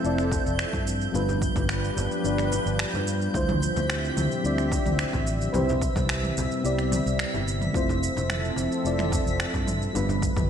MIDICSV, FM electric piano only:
0, 0, Header, 1, 2, 480
1, 0, Start_track
1, 0, Tempo, 550459
1, 996, Time_signature, 4, 2, 24, 8
1, 9155, End_track
2, 0, Start_track
2, 0, Title_t, "FM electric piano"
2, 0, Program_c, 0, 5
2, 0, Control_c, 0, 64, 127
2, 0, Note_on_c, 0, 57, 87
2, 0, Note_on_c, 0, 60, 83
2, 0, Note_on_c, 0, 64, 83
2, 0, Note_on_c, 0, 65, 81
2, 0, Note_on_c, 0, 72, 99
2, 23, Note_off_c, 0, 57, 0
2, 23, Note_on_c, 0, 57, 76
2, 30, Note_off_c, 0, 60, 0
2, 30, Note_on_c, 0, 60, 71
2, 39, Note_off_c, 0, 64, 0
2, 39, Note_on_c, 0, 64, 75
2, 45, Note_off_c, 0, 65, 0
2, 45, Note_on_c, 0, 65, 72
2, 53, Note_on_c, 0, 74, 89
2, 736, Note_off_c, 0, 57, 0
2, 739, Note_off_c, 0, 60, 0
2, 744, Note_off_c, 0, 64, 0
2, 747, Note_off_c, 0, 65, 0
2, 751, Note_off_c, 0, 74, 0
2, 768, Control_c, 0, 64, 0
2, 774, Note_off_c, 0, 72, 0
2, 922, Control_c, 0, 64, 127
2, 979, Note_on_c, 0, 55, 89
2, 986, Note_on_c, 0, 59, 80
2, 994, Note_on_c, 0, 62, 76
2, 1000, Note_on_c, 0, 65, 87
2, 1009, Note_on_c, 0, 71, 99
2, 1920, Note_off_c, 0, 55, 0
2, 1923, Note_off_c, 0, 59, 0
2, 1927, Note_off_c, 0, 62, 0
2, 1930, Note_off_c, 0, 65, 0
2, 1935, Note_off_c, 0, 71, 0
2, 1942, Note_on_c, 0, 55, 83
2, 1950, Note_on_c, 0, 59, 75
2, 1956, Note_on_c, 0, 62, 73
2, 1964, Note_on_c, 0, 65, 70
2, 1971, Note_on_c, 0, 74, 87
2, 2882, Note_off_c, 0, 55, 0
2, 2885, Note_off_c, 0, 59, 0
2, 2888, Note_off_c, 0, 62, 0
2, 2892, Note_off_c, 0, 65, 0
2, 2896, Note_off_c, 0, 74, 0
2, 2903, Note_on_c, 0, 55, 87
2, 2910, Note_on_c, 0, 62, 80
2, 2918, Note_on_c, 0, 64, 83
2, 2924, Note_on_c, 0, 65, 78
2, 2926, Control_c, 0, 64, 0
2, 2933, Note_on_c, 0, 72, 104
2, 3077, Control_c, 0, 64, 127
2, 3842, Note_off_c, 0, 55, 0
2, 3845, Note_off_c, 0, 62, 0
2, 3849, Note_off_c, 0, 64, 0
2, 3852, Note_off_c, 0, 65, 0
2, 3857, Note_off_c, 0, 72, 0
2, 3860, Note_on_c, 0, 55, 81
2, 3868, Note_on_c, 0, 62, 70
2, 3874, Note_on_c, 0, 64, 72
2, 3884, Note_on_c, 0, 65, 73
2, 3890, Note_on_c, 0, 74, 93
2, 4800, Note_off_c, 0, 55, 0
2, 4804, Note_off_c, 0, 62, 0
2, 4807, Note_off_c, 0, 64, 0
2, 4812, Note_off_c, 0, 65, 0
2, 4815, Note_off_c, 0, 74, 0
2, 4820, Note_on_c, 0, 71, 90
2, 4826, Note_on_c, 0, 60, 83
2, 4834, Note_on_c, 0, 64, 80
2, 4841, Note_on_c, 0, 67, 83
2, 4849, Control_c, 0, 64, 0
2, 4850, Note_on_c, 0, 72, 96
2, 4985, Control_c, 0, 64, 127
2, 5760, Note_off_c, 0, 71, 0
2, 5763, Note_off_c, 0, 60, 0
2, 5767, Note_off_c, 0, 64, 0
2, 5771, Note_off_c, 0, 67, 0
2, 5775, Note_off_c, 0, 72, 0
2, 5777, Note_on_c, 0, 59, 76
2, 5784, Note_on_c, 0, 60, 73
2, 5791, Note_on_c, 0, 64, 78
2, 5798, Note_on_c, 0, 67, 68
2, 5805, Note_on_c, 0, 74, 93
2, 6719, Note_off_c, 0, 59, 0
2, 6722, Note_off_c, 0, 60, 0
2, 6726, Note_off_c, 0, 64, 0
2, 6729, Note_off_c, 0, 67, 0
2, 6733, Note_off_c, 0, 74, 0
2, 6742, Note_on_c, 0, 57, 93
2, 6750, Note_on_c, 0, 60, 84
2, 6757, Note_on_c, 0, 64, 84
2, 6763, Note_on_c, 0, 65, 84
2, 6769, Control_c, 0, 64, 0
2, 6772, Note_on_c, 0, 72, 101
2, 6921, Control_c, 0, 64, 127
2, 7681, Note_off_c, 0, 57, 0
2, 7685, Note_off_c, 0, 60, 0
2, 7689, Note_off_c, 0, 64, 0
2, 7692, Note_off_c, 0, 65, 0
2, 7696, Note_off_c, 0, 72, 0
2, 7703, Note_on_c, 0, 57, 80
2, 7711, Note_on_c, 0, 60, 70
2, 7719, Note_on_c, 0, 64, 73
2, 7726, Note_on_c, 0, 65, 68
2, 7732, Note_on_c, 0, 74, 88
2, 8416, Note_off_c, 0, 57, 0
2, 8420, Note_off_c, 0, 60, 0
2, 8424, Note_off_c, 0, 64, 0
2, 8427, Note_off_c, 0, 65, 0
2, 8430, Note_off_c, 0, 74, 0
2, 8447, Control_c, 0, 64, 0
2, 8621, Control_c, 0, 64, 127
2, 8660, Note_on_c, 0, 55, 87
2, 8667, Note_on_c, 0, 59, 77
2, 8675, Note_on_c, 0, 62, 83
2, 8683, Note_on_c, 0, 65, 83
2, 8690, Note_on_c, 0, 71, 99
2, 9155, Note_off_c, 0, 55, 0
2, 9155, Note_off_c, 0, 59, 0
2, 9155, Note_off_c, 0, 62, 0
2, 9155, Note_off_c, 0, 65, 0
2, 9155, Note_off_c, 0, 71, 0
2, 9155, End_track
0, 0, End_of_file